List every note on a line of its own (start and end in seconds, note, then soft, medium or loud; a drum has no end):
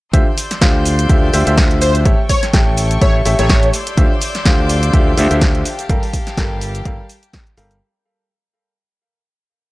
0.13 0.22 D2 loud
0.13 0.24 D3 medium
0.13 0.24 F4 medium
0.13 0.24 G4 medium
0.13 0.24 C5 medium
0.13 2.04 D5 medium
0.13 0.24 E5 loud
0.13 2.04 C6 medium
0.13 2.04 E6 medium
0.13 2.04 G6 loud
0.13 kick loud
0.13 closed hi-hat medium
0.13 shaker soft
0.38 open hi-hat loud
0.38 shaker medium
0.51 snare soft
0.51 closed hi-hat medium
0.51 shaker soft
0.61 1.07 D2 medium
0.61 1.07 D3 medium
0.61 1.07 F4 medium
0.61 1.07 G4 medium
0.61 1.07 C5 medium
0.61 1.07 F5 medium
0.61 kick loud
0.61 snare loud
0.61 closed hi-hat medium
0.61 shaker soft
0.86 open hi-hat loud
0.86 shaker medium
0.99 closed hi-hat medium
0.99 shaker soft
1.09 1.26 D3 medium
1.09 1.26 F4 medium
1.09 1.26 G4 medium
1.09 1.26 C5 medium
1.09 1.26 E5 medium
1.09 kick loud
1.09 closed hi-hat medium
1.09 shaker soft
1.33 1.44 D2 loud
1.33 1.45 D3 medium
1.33 1.45 F4 medium
1.33 1.45 G4 medium
1.33 1.45 C5 medium
1.33 1.45 E5 loud
1.33 open hi-hat loud
1.33 shaker medium
1.47 2.03 D2 loud
1.47 2.03 D3 medium
1.47 2.03 F4 medium
1.47 2.03 G4 medium
1.47 2.03 C5 medium
1.47 2.03 E5 loud
1.47 closed hi-hat medium
1.47 shaker soft
1.57 kick loud
1.57 snare loud
1.57 closed hi-hat medium
1.57 shaker soft
1.71 closed hi-hat soft
1.81 1.96 C5 loud
1.81 open hi-hat loud
1.81 shaker medium
1.95 closed hi-hat medium
1.95 shaker soft
2.05 2.14 A1 loud
2.05 2.16 A3 medium
2.05 2.16 G4 medium
2.05 2.16 A4 medium
2.05 3.72 A4 medium
2.05 2.16 C#5 medium
2.05 2.16 E5 loud
2.05 3.72 G5 medium
2.05 3.72 C#6 loud
2.05 kick loud
2.05 closed hi-hat medium
2.05 shaker soft
2.29 2.44 C#5 loud
2.29 kick medium
2.29 open hi-hat loud
2.29 shaker medium
2.43 snare soft
2.43 closed hi-hat medium
2.43 shaker soft
2.53 2.99 A1 loud
2.53 2.99 A3 medium
2.53 2.99 G4 medium
2.53 2.99 A4 medium
2.53 2.99 C#5 medium
2.53 2.99 G5 medium
2.53 kick loud
2.53 snare loud
2.53 closed hi-hat medium
2.53 shaker soft
2.77 open hi-hat loud
2.77 shaker medium
2.91 closed hi-hat medium
2.91 shaker soft
3.01 3.23 A1 loud
3.01 3.18 A3 medium
3.01 3.18 G4 medium
3.01 3.18 A4 medium
3.01 3.18 C#5 medium
3.01 3.16 C#5 medium
3.01 3.18 E5 loud
3.01 kick loud
3.01 closed hi-hat medium
3.01 shaker soft
3.25 3.36 A1 loud
3.25 3.37 A3 medium
3.25 3.37 G4 medium
3.25 3.37 A4 medium
3.25 3.37 C#5 medium
3.25 3.37 E5 loud
3.25 open hi-hat loud
3.25 shaker medium
3.39 3.70 A1 loud
3.39 3.72 A3 medium
3.39 3.72 G4 medium
3.39 3.72 A4 medium
3.39 3.72 C#5 medium
3.39 3.74 C#5 loud
3.39 3.72 E5 loud
3.39 closed hi-hat medium
3.39 shaker soft
3.49 kick loud
3.49 snare loud
3.49 closed hi-hat medium
3.49 shaker soft
3.63 closed hi-hat soft
3.73 5.64 D5 medium
3.73 5.64 C6 medium
3.73 5.64 D6 medium
3.73 5.64 E6 medium
3.73 5.64 G6 loud
3.73 open hi-hat loud
3.73 shaker medium
3.87 closed hi-hat medium
3.87 shaker soft
3.97 4.06 D2 loud
3.97 4.08 D3 medium
3.97 4.08 F4 medium
3.97 4.08 G4 medium
3.97 4.08 C5 medium
3.97 4.08 E5 loud
3.97 kick loud
3.97 closed hi-hat medium
3.97 shaker soft
4.21 open hi-hat loud
4.21 shaker medium
4.35 snare soft
4.35 closed hi-hat medium
4.35 shaker soft
4.45 4.91 D2 loud
4.45 4.91 D3 medium
4.45 4.91 F4 medium
4.45 4.91 G4 medium
4.45 4.91 C5 medium
4.45 4.91 F5 medium
4.45 kick loud
4.45 snare loud
4.45 closed hi-hat medium
4.45 shaker soft
4.69 open hi-hat loud
4.69 shaker medium
4.83 closed hi-hat medium
4.83 shaker soft
4.93 5.15 D2 loud
4.93 5.10 D3 medium
4.93 5.10 F4 medium
4.93 5.10 G4 medium
4.93 5.10 C5 medium
4.93 5.10 E5 loud
4.93 kick loud
4.93 closed hi-hat medium
4.93 shaker soft
5.17 5.28 D2 loud
5.17 5.29 D3 medium
5.17 5.29 F4 medium
5.17 5.29 G4 medium
5.17 5.29 C5 medium
5.17 5.29 E5 loud
5.17 open hi-hat loud
5.17 shaker medium
5.31 5.62 D2 loud
5.31 5.64 D3 medium
5.31 5.64 F4 medium
5.31 5.64 G4 medium
5.31 5.64 C5 medium
5.31 5.64 E5 loud
5.31 closed hi-hat medium
5.31 shaker soft
5.41 kick loud
5.41 snare loud
5.41 closed hi-hat medium
5.41 shaker soft
5.55 closed hi-hat soft
5.65 7.79 G4 medium
5.65 7.79 F5 medium
5.65 7.79 G5 loud
5.65 7.79 A5 medium
5.65 open hi-hat loud
5.65 shaker medium
5.79 closed hi-hat medium
5.79 shaker soft
5.89 5.98 G1 loud
5.89 6.00 G3 loud
5.89 6.00 G4 medium
5.89 6.00 A4 medium
5.89 6.00 A#4 medium
5.89 6.00 F5 loud
5.89 kick loud
5.89 closed hi-hat medium
5.89 shaker soft
6.03 open hi-hat medium
6.13 kick medium
6.13 open hi-hat loud
6.13 shaker medium
6.27 snare soft
6.27 closed hi-hat medium
6.27 shaker soft
6.37 6.83 G1 loud
6.37 6.83 G3 medium
6.37 6.83 G4 medium
6.37 6.83 A4 medium
6.37 6.83 A#4 medium
6.37 6.83 G5 medium
6.37 kick loud
6.37 snare loud
6.37 closed hi-hat medium
6.37 shaker soft
6.61 open hi-hat loud
6.61 shaker medium
6.75 closed hi-hat medium
6.75 shaker soft
6.85 7.02 G3 medium
6.85 7.02 G4 medium
6.85 7.02 A4 medium
6.85 7.02 A#4 medium
6.85 7.02 F5 medium
6.85 kick loud
6.85 closed hi-hat medium
6.85 shaker soft
7.09 open hi-hat loud
7.09 shaker medium
7.23 closed hi-hat medium
7.23 shaker soft
7.33 kick loud
7.33 snare loud
7.33 closed hi-hat medium
7.33 shaker soft
7.47 closed hi-hat soft
7.57 7.79 G1 loud
7.57 7.74 G3 medium
7.57 7.74 G4 medium
7.57 7.74 A4 medium
7.57 7.74 A#4 medium
7.57 7.74 F5 loud
7.57 open hi-hat loud
7.57 shaker medium
7.71 closed hi-hat medium
7.71 shaker soft